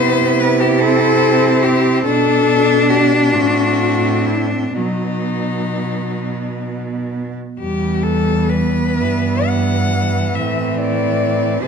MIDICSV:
0, 0, Header, 1, 5, 480
1, 0, Start_track
1, 0, Key_signature, 1, "minor"
1, 0, Tempo, 817439
1, 1204, Time_signature, 6, 3, 24, 8
1, 1204, Tempo, 872093
1, 2164, Tempo, 964630
1, 3124, Tempo, 923077
1, 4564, Tempo, 980392
1, 5044, Tempo, 887574
1, 5524, Tempo, 845070
1, 6270, End_track
2, 0, Start_track
2, 0, Title_t, "Cello"
2, 0, Program_c, 0, 42
2, 0, Note_on_c, 0, 72, 125
2, 235, Note_on_c, 0, 71, 112
2, 243, Note_off_c, 0, 72, 0
2, 358, Note_on_c, 0, 67, 101
2, 367, Note_off_c, 0, 71, 0
2, 477, Note_on_c, 0, 69, 122
2, 486, Note_off_c, 0, 67, 0
2, 957, Note_on_c, 0, 67, 102
2, 965, Note_off_c, 0, 69, 0
2, 1196, Note_off_c, 0, 67, 0
2, 1200, Note_on_c, 0, 69, 117
2, 1672, Note_on_c, 0, 67, 91
2, 1680, Note_off_c, 0, 69, 0
2, 1915, Note_on_c, 0, 66, 100
2, 1923, Note_off_c, 0, 67, 0
2, 2396, Note_on_c, 0, 64, 82
2, 2403, Note_off_c, 0, 66, 0
2, 2517, Note_on_c, 0, 60, 74
2, 2524, Note_off_c, 0, 64, 0
2, 2634, Note_on_c, 0, 63, 87
2, 2642, Note_off_c, 0, 60, 0
2, 3857, Note_off_c, 0, 63, 0
2, 4096, Note_on_c, 0, 67, 85
2, 4321, Note_on_c, 0, 69, 94
2, 4329, Note_off_c, 0, 67, 0
2, 4563, Note_on_c, 0, 71, 96
2, 4570, Note_off_c, 0, 69, 0
2, 5041, Note_on_c, 0, 78, 101
2, 5049, Note_off_c, 0, 71, 0
2, 5518, Note_on_c, 0, 76, 85
2, 5527, Note_off_c, 0, 78, 0
2, 5766, Note_on_c, 0, 74, 96
2, 5774, Note_off_c, 0, 76, 0
2, 6241, Note_off_c, 0, 74, 0
2, 6244, Note_on_c, 0, 72, 108
2, 6270, Note_off_c, 0, 72, 0
2, 6270, End_track
3, 0, Start_track
3, 0, Title_t, "Cello"
3, 0, Program_c, 1, 42
3, 0, Note_on_c, 1, 64, 90
3, 1180, Note_off_c, 1, 64, 0
3, 1204, Note_on_c, 1, 62, 87
3, 1916, Note_on_c, 1, 60, 70
3, 1924, Note_off_c, 1, 62, 0
3, 2639, Note_off_c, 1, 60, 0
3, 2642, Note_on_c, 1, 59, 65
3, 3968, Note_off_c, 1, 59, 0
3, 4097, Note_on_c, 1, 59, 79
3, 5503, Note_off_c, 1, 59, 0
3, 5524, Note_on_c, 1, 60, 75
3, 6243, Note_on_c, 1, 69, 83
3, 6251, Note_off_c, 1, 60, 0
3, 6270, Note_off_c, 1, 69, 0
3, 6270, End_track
4, 0, Start_track
4, 0, Title_t, "Cello"
4, 0, Program_c, 2, 42
4, 0, Note_on_c, 2, 59, 82
4, 480, Note_off_c, 2, 59, 0
4, 483, Note_on_c, 2, 60, 96
4, 1206, Note_on_c, 2, 62, 106
4, 1215, Note_off_c, 2, 60, 0
4, 2638, Note_on_c, 2, 54, 72
4, 2646, Note_off_c, 2, 62, 0
4, 3735, Note_off_c, 2, 54, 0
4, 4100, Note_on_c, 2, 55, 68
4, 4788, Note_off_c, 2, 55, 0
4, 4805, Note_on_c, 2, 52, 72
4, 6221, Note_off_c, 2, 52, 0
4, 6250, Note_on_c, 2, 52, 69
4, 6270, Note_off_c, 2, 52, 0
4, 6270, End_track
5, 0, Start_track
5, 0, Title_t, "Cello"
5, 0, Program_c, 3, 42
5, 0, Note_on_c, 3, 48, 78
5, 1204, Note_off_c, 3, 48, 0
5, 1208, Note_on_c, 3, 47, 74
5, 1918, Note_on_c, 3, 45, 77
5, 1927, Note_off_c, 3, 47, 0
5, 2640, Note_off_c, 3, 45, 0
5, 2643, Note_on_c, 3, 47, 56
5, 3968, Note_off_c, 3, 47, 0
5, 4101, Note_on_c, 3, 40, 67
5, 4811, Note_on_c, 3, 43, 65
5, 4819, Note_off_c, 3, 40, 0
5, 5527, Note_off_c, 3, 43, 0
5, 5530, Note_on_c, 3, 45, 67
5, 6233, Note_off_c, 3, 45, 0
5, 6249, Note_on_c, 3, 48, 70
5, 6270, Note_off_c, 3, 48, 0
5, 6270, End_track
0, 0, End_of_file